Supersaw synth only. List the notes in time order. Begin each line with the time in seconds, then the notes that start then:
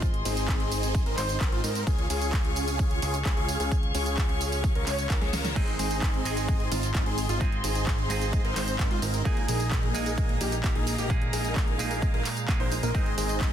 0.25 C4 D#4 G#4
1.06 C4 D#4 A#4
1.18 C4 D#4 C5
1.41 C4 D#4 A#4
1.52 C4 D#4 F4
1.64 C4 D#4 A#4
1.87 C#4 F4 G#4
2.10 C#4 F4 G#4
3.02 C#4 F4 G#4
3.25 C#4 F4 G#4
3.37 C#4 F4 G#4
3.60 C#4 F4 G#4
3.95 C#4 F4 G#4
4.75 C#4 F4 A#4
4.87 C#4 F4 C#5
5.10 C#4 F4 A#4
5.21 C#4 F4 G#4
5.33 C#4 F4 A#4
5.56 C4 D#4 G#4
5.79 C4 D#4 G#4
6.72 C4 D#4 F4
6.95 C4 D#4 F4
7.06 C4 D#4 G#4
7.29 C4 D#4 F4
7.64 C4 D#4 G#4
8.45 C4 D#4 A#4
8.56 C4 D#4 C5
8.79 C4 A#4
8.91 C4 D#4 F4
9.02 C4 D#4 A#4
9.25 A#3 G#4
9.48 A#3 D#4 G#4
10.41 A#3 D#4 G4
10.64 A#3 D#4 G4
10.75 A#3 D#4 G#4
10.98 A#3 D#4 G4
11.33 A#3 D#4 G#4
12.14 A#3 D#4 A#4
12.60 A#3 D#4 C5
12.83 A#3 D#4 A#4
12.95 C4 D#4 G#4
13.18 C4 D#4 G#4